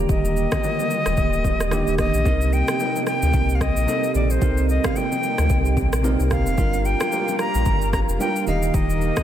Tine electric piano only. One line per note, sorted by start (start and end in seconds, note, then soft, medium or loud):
0.00 0.70 D3 medium
0.00 0.69 D#3 medium
0.00 0.69 A#3 medium
0.00 0.70 G4 medium
1.70 2.08 D#3 medium
1.70 2.08 A#3 medium
1.70 2.09 D4 medium
1.70 2.09 G4 loud
2.24 2.97 C3 medium
2.24 2.98 C4 medium
2.24 2.98 D#4 medium
2.24 2.99 A#4 medium
3.86 4.24 C3 medium
3.86 4.24 C4 medium
3.86 4.25 D#4 medium
3.86 4.25 A4 medium
4.41 5.14 C3 medium
4.41 5.14 C4 medium
4.41 5.15 D#4 medium
4.41 5.15 A#4 medium
6.03 6.40 C3 medium
6.03 6.41 C4 medium
6.03 6.41 D#4 medium
6.03 6.41 A#4 loud
6.57 7.30 G3 medium
6.57 7.30 D4 medium
6.57 7.31 F4 medium
6.57 7.31 A#4 medium
8.19 8.47 G3 medium
8.19 8.47 D4 medium
8.19 8.47 F4 medium
8.19 8.48 A#4 medium
8.46 9.23 D#3 medium
8.46 9.23 D#4 medium
8.46 9.23 G4 medium
8.46 9.23 D#5 medium